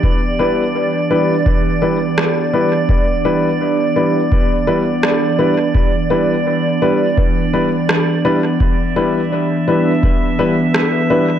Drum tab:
SD |------r-|------r-|------r-|------r-|
BD |o---o---|o---o---|o---o---|o---o---|